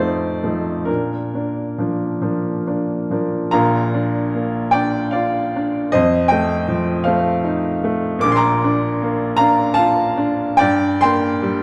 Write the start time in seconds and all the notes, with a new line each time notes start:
Already playing: F2 D#4 F4 C5 D5
0.00 A3
0.43 F3 A3 D#4
0.85 A#2 D4 A#4
1.34 A#3 D4
1.78 F3 A#3 D4
2.21 F3 A#3 D4
2.67 A#3 D4
3.10 F3 A#3 D4
3.51 A#1 A#2 F5 A#5
3.94 D4
4.35 A#3
4.71 D4 D5 G5
5.11 F4 D5 F5
5.56 D4
5.92 F2 C5 D#5
6.28 A3 D#5 G5
6.68 F3
7.04 A3 C5 F5
7.44 D#4
7.84 A3
8.19 A#2 D6
8.23 A#1
8.32 C6 D6
8.37 A#5
8.64 D4
9.03 A#3
9.37 D4 F5 A#5
9.74 F4 F5 A5
10.17 D4
10.57 G2 D5 G5
11.01 A#3 G5 C6
11.42 G3